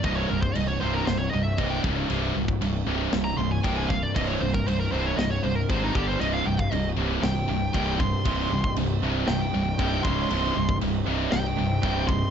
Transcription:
<<
  \new Staff \with { instrumentName = "Lead electric guitar" } { \time 4/4 \key c \phrygian \tempo 4 = 117 ees''16 des''16 bes'16 c''16 ees''16 des''16 c''16 bes'16 c''16 des''16 ees''16 e''16 ees''16 g''16 r8 | r2 r16 bes''16 c'''16 aes''16 g''16 aes''16 f''16 d''16 | ees''16 des''16 c''16 bes'16 c''16 bes'16 c''16 des''16 ees''16 des''16 c''16 bes'16 c''16 ees'16 g'16 c''16 | ees''16 f''16 g''16 f''16 ees''8 r8 g''4. c'''8~ |
c'''4 r4 g''4. c'''8~ | c'''4 r4 g''4. c'''8 | }
  \new Staff \with { instrumentName = "Analog synth pad" } { \clef bass \time 4/4 \key c \phrygian r1 | r1 | r1 | <c g c' ees'>1~ |
<c g c' ees'>2.~ <c g c' ees'>8 <des aes des''>8 | <c g c'>1 | }
  \new Staff \with { instrumentName = "Distorted electric guitar" } { \clef bass \time 4/4 \key c \phrygian <c, g, c>8 <c, g,>8 <c, g,>8 <c, g, c>8 <c, g,>8 <c, g,>8 <c, g, c>8 <des, aes, des>8 | <c, g, c>8 <c, g,>8 <c, g,>8 <c, g, c>8 <c, g,>8 <c, g,>8 <c, g, c>8 <c, g,>8 | <c, g, c>8 <c, g,>8 <c, g,>8 <c, g, c>8 <c, g,>8 <c, g,>8 <c, g, c>8 <g, d g>8 | <c, g, c>8 <c, g,>8 <c, g,>8 <c, g, c>8 <c, g,>8 <c, g,>8 <c, g, c>8 <c, g,>8 |
<c, g, c>8 <c, g,>8 <c, g,>8 <c, g, c>8 <c, g,>8 <c, g,>8 <c, g, c>8 <des, aes, des>8 | <c, g, c>8 <c, g,>8 <c, g,>8 <c, g, c>8 <c, g,>8 <c, g,>8 <c, g, c>8 <c, g,>8 | }
  \new Staff \with { instrumentName = "Distorted electric guitar" } { \clef bass \time 4/4 \key c \phrygian <c, g, c>8 <c, g,>8 <c, g,>8 <c, g, c>8 <c, g,>8 <c, g,>8 <c, g, c>8 <des, aes, des>8 | <c, g, c>8 <c, g,>8 <c, g,>8 <c, g, c>8 <c, g,>8 <c, g,>8 <c, g, c>8 <c, g,>8 | <c, g, c>8 <c, g,>8 <c, g,>8 <c, g, c>8 <c, g,>8 <c, g,>8 <c, g, c>8 <g, d g>8 | <c, g, c>8 <c, g,>8 <c, g,>8 <c, g, c>8 <c, g,>8 <c, g,>8 <c, g, c>8 <c, g,>8 |
<c, g, c>8 <c, g,>8 <c, g,>8 <c, g, c>8 <c, g,>8 <c, g,>8 <c, g, c>8 <des, aes, des>8 | <c, g, c>8 <c, g,>8 <c, g,>8 <c, g, c>8 <c, g,>8 <c, g,>8 <c, g, c>8 <c, g,>8 | }
  \new Staff \with { instrumentName = "Picked electric bass" } { \clef bass \time 4/4 \key c \phrygian c,,8 c,,8 c,,8 c,,8 c,,8 c,,8 c,,8 des,,8 | c,,8 c,,8 c,,8 c,,8 c,,8 c,,8 c,,4 | c,,8 c,,8 c,,8 c,,8 c,,8 c,,8 aes,,8 g,,8 | c,,8 c,,8 c,,8 c,,8 c,,8 c,,8 c,,4 |
c,,8 c,,8 c,,8 c,,8 c,,8 c,,8 c,,8 des,,8 | c,,8 c,,8 c,,8 c,,8 c,,8 c,,8 c,,4 | }
  \new DrumStaff \with { instrumentName = "Drums" } \drummode { \time 4/4 <cymc bd>8. bd16 cymc4 <cymc sn>4 <cymc bd>8 bd8 | cymc8. bd16 cymc4 <cymc sn>4 <cymc bd>8 bd8 | <cymc bd>8. bd16 cymc4 <cymc sn>4 <cymc bd>8 bd8 | cymc8. bd16 cymc4 <cymc sn>4 <cymc bd>8 bd8 |
<cymc bd>8. bd16 cymc4 <cymc sn>4 <cymc bd>8 bd8 | cymc8. bd16 cymc4 <cymc sn>4 <cymc bd>8 bd8 | }
>>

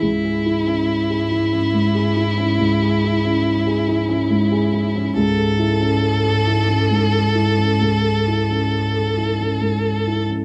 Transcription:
<<
  \new Staff \with { instrumentName = "Violin" } { \time 3/4 \key cis \phrygian \tempo 4 = 69 e'2.~ | e'2. | a'2.~ | a'2~ a'8. r16 | }
  \new Staff \with { instrumentName = "Grand piano" } { \time 3/4 \key cis \phrygian cis,16 gis'16 e'16 cis'8 gis'16 e'16 cis'16 gis,16 gis'16 e'16 cis'16 | cis,16 gis'16 e'16 cis'8 gis'16 e'16 cis'16 gis,16 gis'16 e'16 cis'16 | cis,16 a'16 e'16 cis'8 a'16 e'16 cis'16 gis,16 a'16 e'16 cis'16 | cis,16 a'16 e'16 cis'8 a'16 e'16 cis'16 gis,16 a'16 e'16 cis'16 | }
  \new Staff \with { instrumentName = "Cello" } { \clef bass \time 3/4 \key cis \phrygian gis,2.~ | gis,2. | gis,2.~ | gis,2~ gis,8. r16 | }
>>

